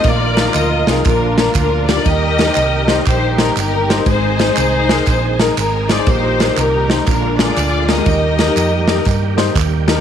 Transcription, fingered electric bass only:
X:1
M:4/4
L:1/8
Q:"Swing" 1/4=120
K:Eb
V:1 name="Fingered electric bass" clef=bass
B,,,2 D,, C,, B,,,2 D,,2 | E,,2 C,,2 B,,,2 G,,,2 | A,,,2 C,,2 B,,,2 A,,,2 | B,,,2 C,,2 B,,,2 D,,2 |
E,,2 F,,2 G,,2 E,,2 |]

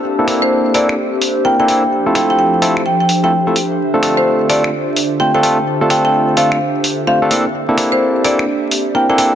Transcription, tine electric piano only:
X:1
M:4/4
L:1/16
Q:"Swing 16ths" 1/4=128
K:Dm
V:1 name="Tine electric piano"
z [B,CDEA] [B,CDEA]4 [B,CDEA] z4 z [B,CDEB] [B,CDEA] [B,CDEA] z | z [A,CEFA] [A,CEFA]4 [A,CEFA] z4 [A,CEFA] z [A,CEFA] z2 | z [A,CDFA] [A,CDFA]4 [A,CDFA] z4 z [A,CDFc] [A,CDFA] [A,CDFA] z | z [A,CDFA] [A,CDFA]4 [A,CDFA] z4 z [A,CDFc] [A,CDFA] [B,CDEA] z |
z [B,CDEA] [B,CDEA]4 [B,CDEA] z4 z [B,CDEB] [B,CDEA] [B,CDEA] z |]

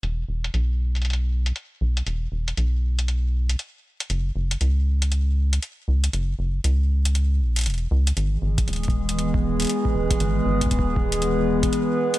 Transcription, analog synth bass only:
X:1
M:4/4
L:1/8
Q:"Swing 16ths" 1/4=118
K:E
V:1 name="Analog synth bass" clef=bass
E,,, E,,, B,,,4 z B,,, | E,,, E,,, B,,,4 z2 | F,,, F,,, C,,4 z C,, | F,,, F,,, C,,3 ^A,,, E,,, C,, |
G,,, G,,, D,,,4 z D,,, | G,,, G,,, D,,,4 z2 |]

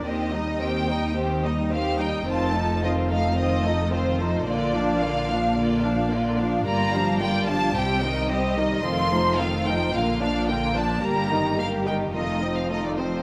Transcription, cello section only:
X:1
M:4/4
L:1/8
Q:1/4=109
K:Bb
V:1 name="Cello section" clef=bass
E,,8 | F,,8 | B,,8 | G,,4 C,4 |
F,,4 B,,4 | G,,4 F,,4 |]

